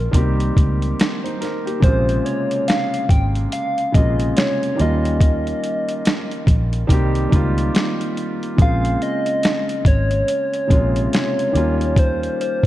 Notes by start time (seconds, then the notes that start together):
Already playing: F3 A#3 C#4 F4
0.11 C2 D#3 G3 A#3 C4, kick, closed hi-hat
0.16 G4
0.40 closed hi-hat
0.57 C#2, kick, closed hi-hat
0.82 closed hi-hat
1.00 snare, closed hi-hat
1.23 D#4 C5, closed hi-hat
1.41 A#4, snare, closed hi-hat
1.65 A#3 G4, closed hi-hat
1.80 A#1 C3 C#3 G#3 A#3 C5, kick, closed hi-hat
1.85 F4
2.09 closed hi-hat
2.26 C#5, closed hi-hat
2.51 closed hi-hat
2.68 F5, snare, closed hi-hat
2.94 closed hi-hat
3.09 G#1 G5, kick, closed hi-hat
3.35 closed hi-hat
3.52 F5, closed hi-hat
3.78 closed hi-hat
3.92 A#1 C3 C#3 G#3 A#3 D#5, kick, closed hi-hat
3.97 F4
4.20 closed hi-hat
4.37 C#5, snare, closed hi-hat
4.63 closed hi-hat
4.76 D#3 G3 A#3, closed hi-hat
4.80 D#2 C#4 F4 D#5
5.05 closed hi-hat
5.21 kick, closed hi-hat
5.47 closed hi-hat
5.64 closed hi-hat
5.89 closed hi-hat
6.05 snare, closed hi-hat
6.31 closed hi-hat
6.47 A#1, kick, closed hi-hat
6.73 closed hi-hat
6.87 C2 D#3 G3 A#3 C4, kick, closed hi-hat
6.92 G4
7.15 closed hi-hat
7.29 C#2 D#3 G3 A#3, kick, closed hi-hat
7.34 C4 F4
7.58 closed hi-hat
7.75 snare, closed hi-hat
8.01 closed hi-hat
8.17 closed hi-hat
8.43 closed hi-hat
8.57 A#1 C#3 G#3 A#3 C4, kick, closed hi-hat
8.61 F4 F5
8.85 closed hi-hat
9.02 D#5, closed hi-hat
9.26 closed hi-hat
9.43 snare, closed hi-hat
9.69 closed hi-hat
9.85 G#1 C#5, kick, closed hi-hat
10.11 closed hi-hat
10.28 closed hi-hat
10.54 closed hi-hat
10.67 A#1 C3 C#3 G#3 A#3, kick, closed hi-hat
10.72 F4
10.96 closed hi-hat
11.13 C#5, snare, closed hi-hat
11.39 closed hi-hat
11.52 D#2 D#3 G3 A#3, closed hi-hat
11.56 C#4 F4
11.81 closed hi-hat
11.96 C5, kick, closed hi-hat
12.23 closed hi-hat
12.41 C5, closed hi-hat
12.63 kick